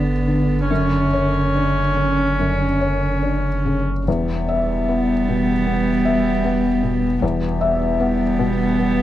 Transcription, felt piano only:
0.00 0.28 D3 soft
0.00 0.72 D4 soft
0.00 0.11 B4 soft
0.28 0.70 D3 soft
0.70 2.34 F#2 soft
1.13 1.80 C#5 soft
1.56 2.22 D4 soft
1.97 2.63 C#4 soft
2.39 4.03 F#2 soft
2.81 3.48 C#5 soft
3.23 3.90 D4 soft
3.65 4.07 C#3 soft
4.08 5.63 E2 medium
4.49 5.12 E5 soft
4.89 5.51 B3 soft
5.29 5.91 B2 medium
5.67 6.29 B3 soft
6.05 6.68 E5 soft
6.44 7.07 B3 medium
6.83 7.45 B2 soft
7.22 8.74 E2 medium
7.61 8.24 E5 medium
8.00 8.63 B3 medium
8.39 9.01 B2 medium
8.79 9.02 B3 medium

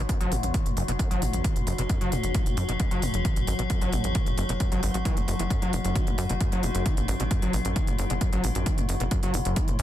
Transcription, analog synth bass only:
0.21 0.29 A1 medium
0.32 0.40 A1 loud
0.43 0.52 A1 medium
0.66 0.74 F#1 medium
0.77 0.86 F#1 loud
0.89 0.97 F#1 medium
1.11 1.19 A1 medium
1.22 1.31 A1 medium
1.34 1.42 A1 medium
1.56 1.64 F#1 medium
1.67 1.76 F#1 loud
1.79 1.87 F#1 loud
2.01 2.09 F#1 medium
2.12 2.21 F#1 loud
2.24 2.32 F#1 medium
2.46 2.54 F#1 medium
2.57 2.66 F#2 loud
2.69 2.77 F#1 medium
2.91 3.00 F#1 medium
3.02 3.11 F#1 loud
3.14 3.22 F#1 medium
3.37 3.45 A1 medium
3.48 3.56 A1 loud
3.59 3.67 A1 loud
3.82 3.90 A1 medium
3.93 4.01 A1 loud
4.04 4.12 A1 medium
4.27 4.35 F#1 medium
4.38 4.46 F#1 loud
4.49 4.58 F#1 medium
4.72 4.80 A1 medium
4.83 4.92 A1 loud
4.94 5.03 A1 medium
5.17 5.25 F#1 medium
5.28 5.37 F#1 loud
5.39 5.48 F#1 medium
5.62 5.70 F#1 medium
5.73 5.82 F#1 loud
5.85 5.93 F#1 medium
6.07 6.15 F#1 medium
6.18 6.27 F#2 loud
6.30 6.38 F#1 medium
6.52 6.60 F#1 medium
6.63 6.72 F#1 medium
6.75 6.83 F#1 medium
6.97 7.06 A1 medium
7.08 7.17 A1 loud
7.20 7.28 A1 medium
7.42 7.51 A1 medium
7.53 7.62 A1 loud
7.65 7.73 A1 medium
7.87 7.96 F#1 medium
7.99 8.07 F#1 loud
8.10 8.18 F#1 medium
8.33 8.41 A1 medium
8.44 8.52 A1 medium
8.55 8.64 A1 medium
8.78 8.86 F#1 medium
8.89 8.97 F#1 loud
9.00 9.09 F#1 medium
9.23 9.31 F#1 medium
9.34 9.43 F#1 loud
9.46 9.54 F#1 medium
9.68 9.76 F#1 medium

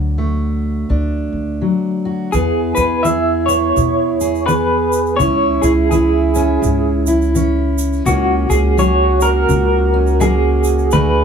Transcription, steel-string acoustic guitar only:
0.00 2.30 D3 medium
0.00 1.61 F#3 medium
0.18 2.33 A3 soft
0.90 2.30 D4 soft
1.61 2.30 F#3 soft
2.05 2.30 F#4 soft
2.33 2.99 E2 medium
2.33 3.47 B3 soft
2.76 3.04 G#4 medium
3.04 3.70 E3 medium
3.04 4.20 G#4 medium
3.48 4.47 B3 soft
3.76 4.42 B2 medium
4.21 5.20 G#4 medium
4.48 5.14 E3 medium
4.48 5.17 B3 medium
5.19 5.85 C#3 medium
5.19 6.35 C#4 soft
5.19 5.62 E4 medium
5.64 5.91 E4 medium
5.91 6.57 E3 medium
5.91 7.06 E4 medium
6.36 7.35 C#4 soft
6.63 7.29 G#2 medium
7.07 8.07 E4 medium
7.35 8.01 E3 medium
7.35 8.03 C#4 medium
8.06 8.72 C#3 medium
8.06 9.21 A#3 medium
8.06 8.49 C#4 medium
8.50 9.92 C#4 soft
8.77 9.43 F#3 medium
8.77 10.89 G#4 medium
9.22 10.20 A#3 medium
9.49 10.15 C#3 medium
9.94 10.89 C#4 medium
10.20 10.86 F#3 medium
10.20 10.89 A#3 medium
10.92 11.24 D3 medium
10.92 11.24 A3 medium
10.92 11.24 D4 medium
10.92 11.24 F#4 medium

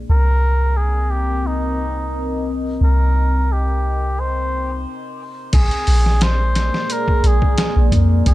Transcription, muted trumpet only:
0.10 0.78 A#4 loud
0.77 1.12 G#4 medium
1.11 1.48 G4 medium
1.47 2.48 D#4 medium
2.84 3.54 A#4 medium
3.52 4.21 G4 medium
4.20 4.87 C5 medium
5.54 6.24 G#4 medium
6.23 6.94 C5 loud
6.92 7.29 A#4 loud
7.27 7.94 G#4 medium
8.28 8.34 G#4 medium

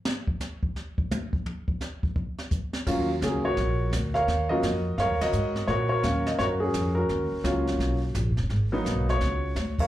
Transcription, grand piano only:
2.87 3.07 F#3 medium
2.87 3.07 A#3 medium
2.87 3.07 C#4 medium
2.87 3.07 F4 medium
3.23 3.43 F#3 medium
3.23 3.43 A#3 medium
3.23 3.43 C#4 medium
3.23 3.43 G#4 medium
3.45 4.11 F#4 medium
3.45 4.11 A#4 medium
3.45 3.89 C#5 medium
4.14 4.49 A#4 medium
4.14 4.81 C#5 medium
4.14 4.51 F5 loud
4.49 4.62 F#3 medium
4.49 4.62 A#3 medium
4.49 4.62 C#4 medium
4.49 4.62 F4 medium
4.49 5.17 F#4 medium
4.49 4.99 A#4 medium
4.49 4.94 D#5 medium
4.98 5.21 A#4 medium
4.98 5.65 C#5 medium
4.98 5.19 F5 medium
5.21 5.68 F#4 medium
5.21 5.68 A#4 medium
5.21 5.70 D#5 loud
5.68 5.90 F#4 medium
5.68 5.90 A#4 medium
5.68 5.88 C#5 medium
5.89 6.39 F#4 medium
5.89 6.39 A#4 medium
5.89 6.26 C#5 medium
6.03 6.56 F#3 medium
6.03 6.56 A#3 medium
6.03 6.57 C#4 medium
6.03 6.57 F5 medium
6.27 6.32 D#5 medium
6.39 6.96 F#4 medium
6.39 6.93 A#4 medium
6.39 6.44 C#5 loud
6.60 6.96 C#4 medium
6.60 6.97 G#4 medium
6.95 7.43 C#4 soft
6.95 7.63 F#4 medium
6.95 7.62 A#4 medium
7.44 7.98 F#3 medium
7.44 7.98 A#3 medium
7.44 7.98 C#4 medium
7.44 7.98 F4 medium
8.72 9.18 F#3 medium
8.72 9.18 A#3 medium
8.72 9.18 B3 medium
8.72 9.19 D#4 medium
9.09 9.75 F#4 medium
9.09 9.79 C#5 medium
9.80 9.87 A#4 medium
9.80 9.87 C#5 medium
9.80 9.87 F5 medium

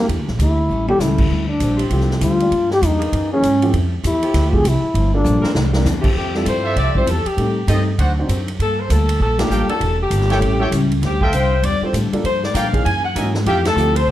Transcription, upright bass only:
0.08 0.19 E2 medium
0.19 0.28 D2 medium
0.28 0.38 A#1 medium
0.39 0.68 D2 medium
0.69 0.98 A1 medium
0.99 1.29 C#2 medium
1.30 1.59 D2 medium
1.60 1.90 A#1 medium
1.90 2.20 C2 medium
2.21 2.51 D2 medium
2.51 2.81 G2 medium
2.82 3.11 E2 medium
3.12 3.42 F#2 medium
3.43 3.72 G#2 medium
3.73 4.03 F2 medium
4.04 4.33 E2 loud
4.34 4.63 D2 medium
4.64 4.82 C2 loud
4.83 muted upright bass stroke soft
4.94 5.24 G1 medium
5.24 5.42 A#1 loud
5.43 muted upright bass stroke soft
5.54 5.84 C2 medium
5.84 6.14 E2 medium
6.15 6.45 F2 medium
6.45 6.75 G2 loud
6.76 6.94 C2 medium
6.95 muted upright bass stroke soft
7.06 7.24 E2 medium
7.25 muted upright bass stroke soft
7.37 7.67 A2 medium
7.67 7.97 G2 loud
7.98 8.28 D2 medium
8.28 8.58 F#2 medium
8.59 8.89 G2 medium
8.90 9.19 D2 loud
9.20 9.49 A#1 medium
9.49 9.67 A1 medium
9.80 10.10 E1 medium
10.10 10.40 G1 medium
10.41 10.71 A1 medium
10.71 11.01 C#2 medium
11.02 11.32 D2 medium
11.32 11.62 C2 medium
11.63 11.81 E2 medium
11.81 muted upright bass stroke soft
11.93 12.11 A2 medium
12.12 muted upright bass stroke soft
12.24 12.54 G2 medium
12.54 12.84 A#2 medium
12.85 13.15 F#2 medium
13.15 13.45 G#2 medium
13.46 13.75 F2 medium
13.76 14.06 D2 loud
14.07 14.11 C2 medium

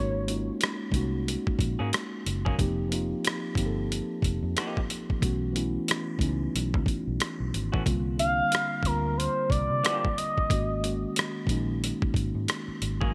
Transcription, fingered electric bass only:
0.00 0.49 G#1 medium
0.92 1.36 C2 medium
1.60 1.75 A#1 medium
1.80 1.91 G#2 medium
2.26 2.53 F#1 medium
2.59 3.13 F1 medium
3.56 3.99 G1 medium
4.23 4.39 F1 medium
4.43 4.54 F2 medium
5.23 5.77 B1 medium
6.19 6.47 C#2 medium
6.55 6.75 B1 medium
6.75 6.85 C#2 medium
7.07 7.18 B1 medium
7.40 7.51 B1 medium
7.54 7.69 G#1 medium
7.74 7.85 A1 medium
7.86 8.40 C2 medium
8.83 9.27 D2 medium
9.51 9.66 C2 medium
9.70 9.82 C3 medium
10.51 11.05 G#1 medium
11.47 11.91 A#1 medium
12.15 12.30 G#1 medium
12.35 12.46 G#2 medium
12.68 muted fingered electric bass stroke soft
12.82 13.08 G#1 medium

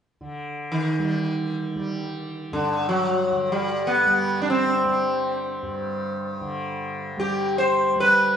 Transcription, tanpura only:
0.21 3.31 D3 soft
0.99 1.75 G3 soft
1.75 4.06 G3 soft
2.52 5.62 G2 soft
3.31 6.40 D3 soft
4.06 4.85 G3 medium
4.85 7.17 G3 soft
5.63 8.37 G2 soft
6.41 8.37 D3 soft
7.17 7.96 G3 soft
7.96 8.37 G3 soft

